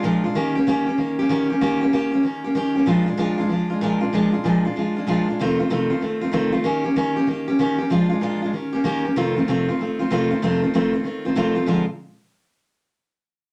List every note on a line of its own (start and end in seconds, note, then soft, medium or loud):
0.03 0.24 A#2 medium
0.03 0.25 F3 loud
0.03 0.25 G#3 loud
0.03 0.25 D4 loud
0.03 0.23 F4 loud
0.24 0.35 G#3 soft
0.24 0.36 D4 soft
0.24 0.36 F4 medium
0.35 0.56 D#3 loud
0.35 0.56 A#3 medium
0.35 0.56 C#4 loud
0.35 0.54 G4 medium
0.55 0.66 A#3 medium
0.55 0.67 C#4 soft
0.55 0.67 G4 medium
0.67 0.88 D#3 medium
0.67 0.88 A#3 medium
0.67 0.88 C#4 loud
0.67 0.85 G4 loud
0.87 0.98 A#3 soft
0.87 0.99 C#4 medium
0.87 0.98 G4 medium
0.98 1.19 D#3 medium
0.98 1.19 A#3 medium
0.98 1.19 C#4 medium
0.98 1.18 G4 medium
1.19 1.29 A#3 soft
1.19 1.29 C#4 soft
1.19 1.30 G4 medium
1.29 1.50 D#3 medium
1.29 1.51 A#3 loud
1.29 1.51 C#4 medium
1.29 1.48 G4 loud
1.50 1.60 A#3 soft
1.50 1.61 C#4 medium
1.50 1.61 G4 medium
1.61 1.82 D#3 medium
1.61 1.82 A#3 loud
1.61 1.82 C#4 loud
1.61 1.80 G4 medium
1.81 1.92 A#3 soft
1.81 1.93 C#4 medium
1.81 1.93 G4 medium
1.93 2.13 D#3 medium
1.93 2.14 A#3 medium
1.93 2.12 C#4 medium
1.93 2.10 G4 loud
2.12 2.23 A#3 soft
2.12 2.25 C#4 medium
2.12 2.24 G4 medium
2.23 2.44 D#3 medium
2.23 2.45 A#3 medium
2.23 2.44 C#4 medium
2.23 2.43 G4 medium
2.44 2.55 A#3 medium
2.44 2.56 C#4 medium
2.44 2.56 G4 medium
2.55 2.76 D#3 medium
2.55 2.77 A#3 medium
2.55 2.76 C#4 medium
2.55 2.74 G4 medium
2.75 2.87 A#3 soft
2.75 2.88 C#4 medium
2.75 2.87 G4 medium
2.86 3.07 A#2 medium
2.86 3.08 F3 medium
2.86 3.08 G#3 medium
2.86 3.06 D4 loud
2.86 3.05 F4 loud
3.06 3.17 G#3 soft
3.06 3.18 D4 medium
3.06 3.18 F4 medium
3.17 3.39 A#2 medium
3.17 3.39 F3 medium
3.17 3.39 G#3 medium
3.17 3.38 D4 loud
3.17 3.36 F4 loud
3.38 3.49 G#3 medium
3.38 3.50 D4 medium
3.38 3.50 F4 medium
3.49 3.70 F3 soft
3.49 3.71 G#3 medium
3.49 3.70 D4 medium
3.49 3.69 F4 medium
3.70 3.82 G#3 medium
3.70 3.82 D4 medium
3.70 3.82 F4 medium
3.81 4.02 A#2 loud
3.81 4.02 F3 medium
3.81 4.02 G#3 medium
3.81 4.01 D4 medium
3.81 4.00 F4 loud
4.01 4.13 G#3 soft
4.01 4.14 D4 medium
4.01 4.13 F4 medium
4.13 4.34 A#2 medium
4.13 4.34 F3 medium
4.13 4.34 G#3 medium
4.13 4.33 D4 loud
4.13 4.31 F4 loud
4.32 4.44 G#3 soft
4.32 4.44 D4 medium
4.32 4.44 F4 medium
4.44 4.65 A#2 medium
4.44 4.66 F3 medium
4.44 4.66 G#3 medium
4.44 4.65 D4 loud
4.44 4.64 F4 medium
4.65 4.76 G#3 soft
4.65 4.76 D4 medium
4.65 4.76 F4 medium
4.76 4.97 F3 medium
4.76 4.97 G#3 medium
4.76 4.97 D4 medium
4.76 4.95 F4 medium
4.96 5.07 G#3 soft
4.96 5.07 D4 medium
4.96 5.08 F4 medium
5.07 5.28 A#2 medium
5.07 5.28 F3 medium
5.07 5.28 G#3 medium
5.07 5.29 D4 medium
5.07 5.27 F4 medium
5.28 5.41 G#3 soft
5.28 5.40 D4 medium
5.28 5.40 F4 medium
5.39 5.60 F2 medium
5.39 5.60 C3 medium
5.39 5.60 D#3 medium
5.39 5.61 A3 medium
5.39 5.59 C4 loud
5.39 5.58 F4 loud
5.59 5.70 D#3 soft
5.59 5.70 A3 soft
5.59 5.71 C4 medium
5.59 5.71 F4 medium
5.70 5.91 F2 medium
5.70 5.91 C3 loud
5.70 5.91 D#3 medium
5.70 5.91 A3 medium
5.70 5.90 C4 medium
5.70 5.89 F4 medium
5.90 6.00 D#3 soft
5.90 6.01 A3 medium
5.90 6.02 C4 medium
5.90 6.02 F4 medium
6.01 6.22 D#3 soft
6.01 6.23 A3 medium
6.01 6.22 C4 medium
6.01 6.20 F4 medium
6.21 6.32 D#3 soft
6.21 6.32 A3 medium
6.21 6.32 C4 medium
6.21 6.32 F4 medium
6.32 6.53 F2 medium
6.32 6.54 C3 medium
6.32 6.54 D#3 loud
6.32 6.53 A3 medium
6.32 6.52 C4 medium
6.32 6.51 F4 loud
6.52 6.63 D#3 soft
6.52 6.64 A3 medium
6.52 6.65 C4 medium
6.52 6.64 F4 medium
6.64 6.85 D#3 medium
6.64 6.85 A#3 medium
6.64 6.84 C#4 loud
6.64 6.83 G4 medium
6.84 6.95 A#3 soft
6.84 6.96 C#4 medium
6.84 6.96 G4 medium
6.96 7.17 D#3 medium
6.96 7.17 A#3 medium
6.96 7.17 C#4 medium
6.96 7.15 G4 loud
7.16 7.27 A#3 soft
7.16 7.28 C#4 medium
7.16 7.28 G4 medium
7.27 7.48 D#3 medium
7.27 7.49 A#3 medium
7.27 7.48 C#4 medium
7.27 7.46 G4 medium
7.48 7.59 A#3 medium
7.48 7.59 C#4 medium
7.48 7.59 G4 medium
7.59 7.80 D#3 medium
7.59 7.80 A#3 medium
7.59 7.79 C#4 loud
7.59 7.77 G4 loud
7.78 7.91 A#3 soft
7.78 7.91 C#4 medium
7.78 7.90 G4 medium
7.90 8.11 A#2 medium
7.90 8.11 F3 medium
7.90 8.12 G#3 medium
7.90 8.10 D4 medium
7.90 8.08 F4 loud
8.10 8.22 G#3 medium
8.10 8.22 D4 soft
8.10 8.22 F4 medium
8.21 8.42 A#2 medium
8.21 8.43 F3 medium
8.21 8.43 G#3 medium
8.21 8.43 D4 medium
8.21 8.41 F4 medium
8.42 8.53 G#3 medium
8.42 8.54 D4 medium
8.42 8.54 F4 medium
8.53 8.74 D#3 medium
8.53 8.74 A#3 medium
8.53 8.73 C#4 medium
8.53 8.71 G4 medium
8.73 8.84 A#3 medium
8.73 8.84 C#4 soft
8.73 8.85 G4 medium
8.84 9.05 D#3 medium
8.84 9.05 A#3 medium
8.84 9.05 C#4 loud
8.84 9.04 G4 loud
9.05 9.17 A#3 soft
9.05 9.17 C#4 medium
9.05 9.16 G4 medium
9.16 9.37 F2 medium
9.16 9.37 C3 medium
9.16 9.37 D#3 loud
9.16 9.37 A3 medium
9.16 9.37 C4 loud
9.16 9.35 F4 loud
9.36 9.48 D#3 soft
9.36 9.48 A3 soft
9.36 9.49 C4 medium
9.36 9.48 F4 medium
9.48 9.68 F2 medium
9.48 9.69 C3 medium
9.48 9.69 D#3 medium
9.48 9.69 A3 medium
9.48 9.69 C4 medium
9.48 9.67 F4 loud
9.69 9.78 D#3 soft
9.69 9.80 A3 medium
9.69 9.80 C4 medium
9.69 9.80 F4 medium
9.79 10.00 D#3 medium
9.79 10.01 A3 medium
9.79 9.99 C4 medium
9.79 9.98 F4 medium
9.99 10.10 D#3 soft
9.99 10.11 A3 medium
9.99 10.11 C4 medium
9.99 10.11 F4 medium
10.11 10.31 F2 medium
10.11 10.31 C3 medium
10.11 10.32 D#3 medium
10.11 10.31 A3 medium
10.11 10.30 C4 loud
10.11 10.29 F4 loud
10.31 10.42 D#3 soft
10.31 10.42 A3 soft
10.31 10.43 C4 medium
10.31 10.42 F4 medium
10.42 10.63 F2 medium
10.42 10.63 C3 medium
10.42 10.63 D#3 medium
10.42 10.63 A3 loud
10.42 10.62 C4 loud
10.42 10.61 F4 loud
10.62 10.73 D#3 soft
10.62 10.74 A3 soft
10.62 10.74 C4 medium
10.62 10.73 F4 medium
10.74 10.94 F2 medium
10.74 10.94 C3 medium
10.74 10.94 D#3 medium
10.74 10.94 A3 medium
10.74 10.93 C4 loud
10.74 10.92 F4 medium
10.93 11.03 D#3 soft
10.93 11.04 A3 medium
10.93 11.05 C4 medium
10.93 11.05 F4 medium
11.04 11.25 D#3 medium
11.04 11.25 A3 medium
11.04 11.25 C4 medium
11.04 11.24 F4 medium
11.25 11.35 D#3 soft
11.25 11.36 A3 medium
11.25 11.36 C4 medium
11.25 11.36 F4 medium
11.35 11.56 F2 medium
11.35 11.57 C3 medium
11.35 11.57 D#3 medium
11.35 11.56 A3 medium
11.35 11.55 C4 loud
11.35 11.54 F4 medium
11.55 11.67 D#3 soft
11.55 11.68 A3 medium
11.55 11.67 C4 medium
11.55 11.67 F4 medium
11.66 11.83 A#2 medium
11.66 11.84 D3 medium
11.66 11.84 F3 medium
11.66 11.84 G#3 medium
11.66 11.84 C4 medium
11.66 11.85 F4 loud